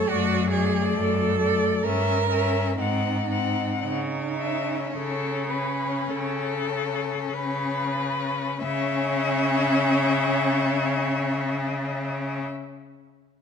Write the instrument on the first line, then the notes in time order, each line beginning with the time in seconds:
cello
Already playing: A4
0.09 F#2 A3 F#4 D5
0.51 A3 G#4 D5
0.95 F#2 A4
1.39 A3 D5
1.83 G2 C#4 A#4 E5
2.31 C#4 E5
2.78 G#2 C4 D#4 F#5
3.30 C4 F#5
3.81 C#3 D#4
4.37 C#4 E5
4.92 C#3 C#4 A4
5.50 C#4 B4
6.09 C#3 A4
6.71 C#4
7.32 C#3 B4
7.98 C#4
8.63 C#3 C#4 E5